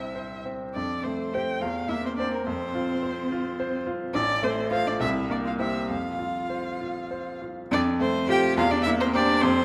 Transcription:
Already playing: grand piano C2 C4 C5, cello E4, violin E5
0.15 grand piano C5
0.46 grand piano C4
0.75 grand piano F2, cello D4, violin D5
1.04 grand piano A3, cello C4, violin C5
1.33 grand piano C4 C5, cello G4, violin G5
1.60 grand piano E2, cello F4, violin F5
1.88 grand piano A#3, cello E4, violin E5
2.02 cello C4, violin C5
2.16 grand piano C4 C5, cello D4, violin D5
2.32 cello A#3, violin A#4
2.45 grand piano F2, cello C4, violin C5
2.75 grand piano F4
3.03 grand piano C5
3.32 grand piano F4
3.60 grand piano C5
3.87 grand piano F4
4.14 grand piano A1, cello D4, violin D5
4.43 grand piano A3, cello C4, violin C5
4.70 cello F4, grand piano F4 C5, violin F5
4.86 cello D4, violin D5
5.00 grand piano C2, cello E4, violin E5
5.30 grand piano A#3, cello D4, violin D5
5.45 cello F4, violin F5
5.59 cello E4, grand piano G4 C5, violin E5
5.89 grand piano F2, cello F4, violin F5
6.19 grand piano F4
6.50 grand piano C5
6.81 grand piano F4
7.11 grand piano C5
7.42 grand piano F4
7.71 grand piano F2, cello D4, violin D5
8.00 grand piano A3, cello C4, violin C5
8.28 grand piano F4 C5, cello G4, violin G5
8.57 grand piano E2, cello F4, violin F5
8.71 cello D4, violin D5
8.83 grand piano A#3, cello E4, violin E5
9.00 cello C4, violin C5
9.14 cello D4, grand piano G4 C5, violin D5
9.42 grand piano F2, cello C4, violin C5

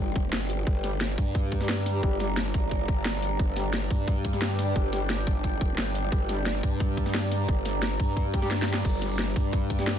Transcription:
Already playing: wobble bass G1, ambient pad G3 D4 D5 G5
0.16 wobble bass F1, kick, closed hi-hat
0.33 wobble bass G1, snare, closed hi-hat
0.50 open hi-hat
0.67 wobble bass G1, ambient pad A#5, kick, closed hi-hat
0.84 brass ensemble G3 D4 G4, snare, closed hi-hat
1.01 snare, closed hi-hat
1.18 wobble bass G2, kick, closed hi-hat
1.35 kick, closed hi-hat
1.52 kick, closed hi-hat
1.61 brass ensemble G3 D4 G4, snare
1.69 snare, closed hi-hat
1.86 snare, open hi-hat
2.03 wobble bass G1, kick, closed hi-hat
2.20 brass ensemble G3 D4 G4, snare, closed hi-hat
2.37 snare, closed hi-hat
2.54 wobble bass G#1, kick, closed hi-hat
2.71 kick, closed hi-hat
2.88 wobble bass G1, kick, closed hi-hat
3.05 snare, closed hi-hat
3.22 open hi-hat
3.39 wobble bass G1, ambient pad G5, kick, closed hi-hat
3.56 brass ensemble G3 D4 G4, snare, closed hi-hat
3.73 snare, closed hi-hat
3.91 wobble bass G2, kick, closed hi-hat
4.08 kick, closed hi-hat
4.25 kick, closed hi-hat
4.33 brass ensemble G3 D4 G4, snare
4.42 snare, closed hi-hat
4.59 snare, open hi-hat
4.76 wobble bass G1, kick, closed hi-hat
4.93 brass ensemble G3 D4 G4, snare, closed hi-hat
5.10 snare, closed hi-hat
5.27 wobble bass G1, kick, closed hi-hat
5.44 kick, closed hi-hat
5.61 wobble bass F1, kick, closed hi-hat
5.78 wobble bass G1, snare, closed hi-hat
5.95 open hi-hat
6.12 wobble bass G1, ambient pad A#5, kick, closed hi-hat
6.29 brass ensemble G3 D4 G4, snare, closed hi-hat
6.46 snare, closed hi-hat
6.63 wobble bass G2, kick, closed hi-hat
6.80 kick, closed hi-hat
6.97 kick, closed hi-hat
7.06 snare
7.14 snare, closed hi-hat
7.31 snare, open hi-hat
7.48 wobble bass G1, kick, closed hi-hat
7.66 snare, closed hi-hat
7.83 snare, closed hi-hat
8.00 wobble bass G2, kick, closed hi-hat
8.17 kick, closed hi-hat
8.34 brass ensemble G3 D4 G4, kick, closed hi-hat
8.42 brass ensemble G3 D4 G4, snare
8.51 snare, closed hi-hat
8.62 snare
8.68 brass ensemble G3 D4 G4, open hi-hat
8.74 snare
8.85 wobble bass G1, ambient pad G5, kick, closed hi-hat, crash
9.02 brass ensemble G3 D4 G4, snare, closed hi-hat
9.19 snare, closed hi-hat
9.36 wobble bass G2, kick, closed hi-hat
9.53 kick, closed hi-hat
9.70 kick, closed hi-hat
9.79 brass ensemble G3 D4 G4, snare
9.87 snare, closed hi-hat

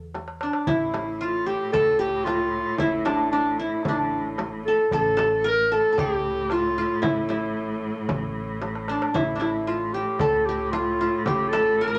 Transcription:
Already playing: upright bass E2, qanun A4, clarinet A4
0.14 darbuka tek, frame drum
0.28 darbuka ka
0.41 clarinet D4, qanun D4, darbuka tek
0.53 darbuka ka
0.67 upright bass A1, cello A2, qanun E4, clarinet E4, darbuka dum, frame drum
0.81 darbuka ka
0.94 darbuka tek, frame drum
1.21 qanun F4, clarinet F4, darbuka ka
1.46 qanun G4, clarinet G4, darbuka ka
1.72 upright bass C#2, clarinet A4, qanun A4, frame drum, darbuka dum
1.99 qanun G4, clarinet G4
2.25 clarinet F4, qanun F4, darbuka tek, frame drum
2.77 upright bass A1, clarinet E4, qanun E4, frame drum, darbuka dum
2.94 darbuka ka
3.05 qanun D4, clarinet D4, darbuka tek, frame drum
3.31 clarinet D4, qanun D4, darbuka ka
3.59 clarinet E4, qanun E4, darbuka ka
3.72 darbuka ka
3.83 upright bass A1, clarinet D4, frame drum, darbuka dum
3.88 qanun D4
4.38 darbuka tek, frame drum
4.65 clarinet A4, qanun A4
4.91 upright bass A1, cello A2, qanun A4, clarinet A4, darbuka dum, frame drum
5.05 darbuka ka
5.17 qanun A4, darbuka tek, frame drum
5.44 qanun A#4, clarinet A#4, darbuka ka
5.70 qanun A4, clarinet A4, darbuka ka
5.84 darbuka ka
5.92 qanun A4
5.98 upright bass C#2, qanun G4, clarinet G4, frame drum, darbuka dum
6.50 qanun F4, clarinet F4, darbuka tek, frame drum
6.78 qanun F4
7.02 upright bass A1, qanun E4, clarinet E4, frame drum, darbuka dum
7.17 darbuka ka
7.29 qanun E4, frame drum
7.43 darbuka ka
7.57 darbuka ka
7.96 darbuka ka
8.09 upright bass A1, darbuka dum, frame drum
8.36 darbuka ka
8.62 darbuka tek, frame drum
8.75 darbuka ka
8.88 qanun D4, clarinet D4, darbuka tek
9.02 darbuka ka
9.14 upright bass A1, cello A2, qanun E4, clarinet E4, darbuka dum, frame drum
9.35 qanun D4
9.40 qanun E4, clarinet E4, darbuka tek, frame drum
9.67 clarinet F4, qanun F4, darbuka ka
9.93 clarinet G4, qanun G4, darbuka ka
10.08 darbuka ka
10.19 upright bass C#2, clarinet A4, qanun A4, frame drum, darbuka dum
10.46 clarinet G4, qanun G4, darbuka ka
10.71 clarinet F4, qanun F4, darbuka tek, frame drum
11.01 qanun F4
11.25 upright bass A1, clarinet G4, qanun G4, frame drum, darbuka dum
11.40 darbuka ka
11.49 clarinet A4, qanun A4
11.53 darbuka tek, frame drum
11.77 clarinet A4, darbuka ka
11.81 qanun A#4
11.88 qanun A#4, clarinet A#4
11.95 qanun A#4

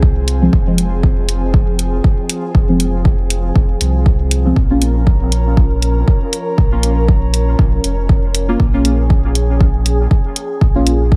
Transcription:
Already playing: sub bass C2, analog synth pad F3 C4 G#4
0.03 kick
0.28 closed hi-hat
0.42 synth stab F3 G#3 C4
0.53 sub bass F1, kick
0.67 synth stab F3 G#3 C4
0.78 closed hi-hat
1.03 kick
1.29 closed hi-hat
1.54 kick
1.79 closed hi-hat
2.04 kick
2.29 closed hi-hat
2.55 sub bass F1, kick
2.69 synth stab F3 G#3 C4
2.80 closed hi-hat
3.05 kick
3.30 closed hi-hat
3.56 sub bass F1, kick
3.81 sub bass C2, closed hi-hat
4.06 kick
4.31 closed hi-hat
4.45 synth stab F3 G#3 C4
4.56 sub bass A#1, analog synth pad C#4 A#4, kick
4.70 synth stab A#3 C#4 F4
4.82 closed hi-hat
5.07 kick
5.32 closed hi-hat
5.57 kick
5.82 closed hi-hat
6.08 kick
6.33 closed hi-hat
6.58 sub bass A#1, kick
6.72 synth stab A#3 C#4 F4
6.83 closed hi-hat
7.08 kick
7.34 closed hi-hat
7.59 sub bass A#1, kick
7.84 sub bass F1, closed hi-hat
8.09 kick
8.35 closed hi-hat
8.49 synth stab A#3 C#4 F4
8.60 sub bass A#1, analog synth pad G#4, kick
8.74 synth stab A#3 C#4 F4
8.85 closed hi-hat
9.10 kick
9.35 closed hi-hat
9.61 kick
9.86 closed hi-hat
10.11 kick
10.36 closed hi-hat
10.61 sub bass A#1, kick
10.75 synth stab A#3 C#4 F4
10.87 closed hi-hat
11.12 kick

